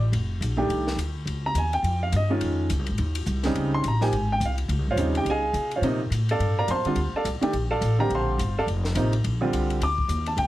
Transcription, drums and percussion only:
0.13 ride medium
0.42 hi-hat pedal soft
0.42 ride medium
0.70 ride medium
0.87 snare soft
0.99 hi-hat pedal medium
0.99 ride medium
1.27 ride medium
1.55 hi-hat pedal medium
1.55 ride medium
1.73 ride soft
1.84 ride medium
2.12 hi-hat pedal medium
2.12 ride medium
2.41 ride medium
2.70 hi-hat pedal medium
2.70 ride medium
2.86 ride soft
2.98 ride medium
3.15 ride medium
3.26 hi-hat pedal medium
3.43 snare soft
3.43 ride soft
3.55 ride soft
3.84 hi-hat pedal soft
3.84 ride medium
4.01 snare soft
4.13 ride medium
4.41 hi-hat pedal medium
4.41 ride medium
4.58 ride soft
4.69 ride medium
4.97 hi-hat pedal medium
4.97 ride medium
5.15 ride soft
5.26 ride medium
5.54 hi-hat pedal soft
5.54 ride medium
5.71 ride soft
5.83 ride medium
6.12 hi-hat pedal medium
6.12 ride medium
6.29 ride soft
6.40 ride medium
6.68 hi-hat pedal medium
6.68 ride medium
6.85 ride soft
6.96 ride medium
7.25 hi-hat pedal medium
7.25 ride medium
7.42 ride soft
7.53 ride medium
7.82 hi-hat pedal medium
7.82 ride medium
8.10 ride medium
8.39 hi-hat pedal medium
8.39 ride medium
8.68 ride medium
8.85 snare soft
8.95 hi-hat pedal medium
8.95 ride medium
9.13 ride soft
9.24 ride medium
9.53 hi-hat pedal soft
9.53 ride medium
9.70 ride soft
9.82 ride medium
9.98 kick medium
10.09 hi-hat pedal medium
10.09 ride medium
10.26 ride soft
10.38 ride medium

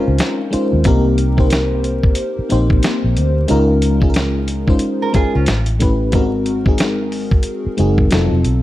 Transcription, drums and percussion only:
0.18 snare loud
0.18 closed hi-hat medium
0.53 closed hi-hat medium
0.84 kick loud
0.84 closed hi-hat medium
1.18 closed hi-hat medium
1.38 kick medium
1.50 snare loud
1.50 closed hi-hat medium
1.84 closed hi-hat soft
2.04 kick medium
2.15 closed hi-hat medium
2.50 closed hi-hat soft
2.70 kick medium
2.83 snare loud
2.83 closed hi-hat medium
3.17 closed hi-hat medium
3.48 closed hi-hat medium
3.82 closed hi-hat medium
4.02 kick medium
4.14 snare loud
4.14 closed hi-hat medium
4.48 closed hi-hat soft
4.68 kick medium
4.79 closed hi-hat medium
5.14 kick medium
5.14 closed hi-hat medium
5.46 snare loud
5.46 closed hi-hat medium
5.66 closed hi-hat soft
5.80 kick medium
5.80 closed hi-hat medium
6.12 kick loud
6.12 closed hi-hat medium
6.46 closed hi-hat medium
6.66 kick medium
6.78 snare loud
6.78 closed hi-hat medium
7.12 open hi-hat soft
7.31 kick medium
7.43 closed hi-hat medium
7.78 closed hi-hat soft
7.98 kick medium
8.11 snare loud
8.11 closed hi-hat medium
8.44 closed hi-hat medium

